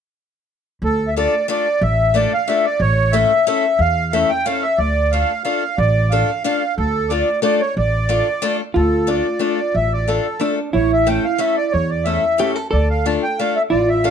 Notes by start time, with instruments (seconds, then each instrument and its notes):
0.82 upright bass D2, accordion A4
1.08 accordion E5
1.16 steel-string acoustic guitar A3 D4 F4 A4, accordion D5
1.48 steel-string acoustic guitar A3 D4 F4 A4, accordion D5
1.81 upright bass A1, accordion E5
2.14 steel-string acoustic guitar A3 D4 F4 A4, accordion D5
2.34 accordion F5
2.48 steel-string acoustic guitar A3 D4 F4 A4, accordion E5
2.65 accordion D5
2.80 upright bass A1, accordion C#5
3.12 steel-string acoustic guitar A3 C#4 E4 A4, accordion E5
3.47 steel-string acoustic guitar A3 C#4 E4 A4, accordion E5
3.79 upright bass E2, accordion F5
4.13 steel-string acoustic guitar A3 C#4 E4 A4, accordion E5
4.29 accordion G5
4.45 steel-string acoustic guitar A3 C#4 E4 A4, accordion F5
4.62 accordion E5
4.78 upright bass D2, accordion D5
5.12 steel-string acoustic guitar A3 D4 F4 A4, accordion F5
5.44 steel-string acoustic guitar A3 D4 F4 A4, accordion F5
5.78 upright bass A1, accordion D5
6.10 steel-string acoustic guitar A3 D4 F4 A4, accordion F5
6.44 steel-string acoustic guitar A3 D4 F4 A4, accordion F5
6.78 upright bass D2, accordion A4
7.09 steel-string acoustic guitar A3 D4 F4 A4, accordion D5
7.42 steel-string acoustic guitar A3 D4 F4 A4, accordion D5
7.60 accordion C#5
7.77 upright bass A1, accordion D5
8.09 steel-string acoustic guitar A3 D4 F4 A4
8.42 steel-string acoustic guitar A3 D4 F4 A4
8.74 upright bass D2, hollow-body jazz guitar F4, accordion A4
9.07 steel-string acoustic guitar A3 D4 F4 A4, accordion D5
9.39 steel-string acoustic guitar A3 D4 F4 A4, accordion D5
9.74 upright bass A1, accordion E5
9.93 accordion D5
10.08 steel-string acoustic guitar A3 D4 F4 A4, accordion A4
10.40 steel-string acoustic guitar A3 D4 F4 A4, hollow-body jazz guitar D4
10.73 upright bass A1, hollow-body jazz guitar E4, accordion C#5
10.92 accordion E5
11.07 steel-string acoustic guitar A3 C#4 E4 A4, accordion G5
11.24 accordion F5
11.38 steel-string acoustic guitar A3 C#4 E4 A4, accordion E5
11.57 accordion D5
11.72 upright bass E2, accordion C#5
11.90 accordion D5
12.04 steel-string acoustic guitar A3 C#4 E4 A4, accordion E5
12.38 steel-string acoustic guitar A3 C#4 E4 A4, hollow-body jazz guitar G4
12.56 hollow-body jazz guitar A4
12.71 upright bass D2, hollow-body jazz guitar A4, accordion D5
12.90 accordion F5
13.06 steel-string acoustic guitar A3 D4 F4 A4, accordion A5
13.23 accordion G5
13.39 steel-string acoustic guitar A3 D4 F4 A4, accordion F5
13.55 accordion E5
13.70 upright bass A1, hollow-body jazz guitar F4, accordion D5
13.89 accordion E5
14.04 steel-string acoustic guitar A3 D4 F4 A4, accordion F5